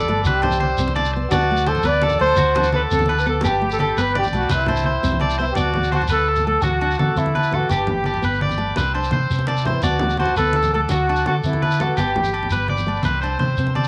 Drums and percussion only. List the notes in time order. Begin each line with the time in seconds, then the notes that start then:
0.08 low conga, low agogo
0.18 low conga
0.25 high conga, shekere
0.36 low conga
0.42 low conga, low agogo
0.51 shekere
0.61 high conga
0.78 shekere
0.88 low conga
0.95 high conga, low agogo, shekere
1.05 shekere
1.22 low conga
1.31 high conga, low conga, low agogo, shekere
1.40 shekere
1.57 shekere
1.66 high conga, low agogo, shekere
1.75 low conga, shekere
1.83 shekere
1.92 shekere
2.02 high conga
2.08 low conga, shekere
2.19 low conga, low agogo
2.28 low conga
2.36 high conga, shekere
2.46 low conga
2.55 low conga, low agogo
2.63 shekere
2.72 high conga
2.91 shekere
2.99 low conga, shekere
3.06 high conga, low agogo, shekere
3.19 shekere
3.33 low conga
3.41 high conga, low conga, low agogo, shekere
3.70 low conga, shekere
3.79 high conga, low agogo
3.98 shekere
4.07 shekere
4.15 high conga
4.23 low conga, shekere
4.33 low agogo, shekere
4.41 shekere
4.49 high conga, low conga, shekere
4.59 low conga, shekere
4.66 low conga, low agogo
4.76 shekere
4.84 high conga, low conga
4.94 low conga
5.04 shekere
5.12 low conga
5.20 high conga, low agogo, shekere
5.30 shekere
5.38 low conga
5.55 high conga, low agogo, shekere
5.65 low conga
5.74 low conga
5.83 low conga, shekere
5.92 high conga, low agogo
6.00 low conga, shekere
6.08 low conga, shekere
6.17 shekere
6.36 low conga, shekere
6.47 low agogo
6.55 low conga
6.62 high conga, low conga, shekere
6.81 low agogo
6.91 shekere
6.99 high conga, low conga
7.17 low conga, shekere
7.26 low conga
7.35 high conga, low agogo
7.43 low conga, shekere
7.53 low conga
7.69 high conga, low agogo, shekere
7.80 low conga
7.87 low conga
7.98 low conga
8.04 high conga, low agogo
8.14 low conga, shekere
8.23 low conga, shekere
8.34 shekere
8.41 high conga
8.49 low conga, shekere
8.58 low agogo
8.67 low conga
8.76 high conga, low conga, shekere
8.95 low conga, low agogo
9.04 shekere
9.11 high conga, low conga
9.31 low conga, shekere
9.39 low conga
9.47 high conga, low agogo
9.56 low conga, shekere
9.65 low conga
9.82 high conga, low agogo, shekere
9.92 low conga
9.99 low conga
10.09 low conga, shekere
10.17 high conga, low agogo
10.26 low conga, shekere
10.36 low conga, shekere
10.46 shekere
10.53 high conga
10.63 low conga, shekere
10.74 low agogo
10.81 low conga
10.89 high conga, low conga, shekere
11.07 low conga, low agogo
11.16 shekere
11.26 high conga
11.43 shekere
11.53 low conga
11.62 high conga, low agogo
11.71 low conga, shekere
11.80 low conga
11.97 high conga, low conga, low agogo, shekere
12.07 shekere
12.16 low conga
12.24 shekere
12.34 low agogo
12.43 low conga
12.50 shekere
12.68 high conga
12.77 low conga, shekere
12.88 low agogo
12.95 low conga, shekere
13.03 high conga, low conga, shekere
13.21 low conga, low agogo, shekere
13.39 high conga, low conga, shekere
13.49 low conga
13.57 low conga, shekere
13.67 low conga
13.75 high conga, low conga, low agogo
13.84 shekere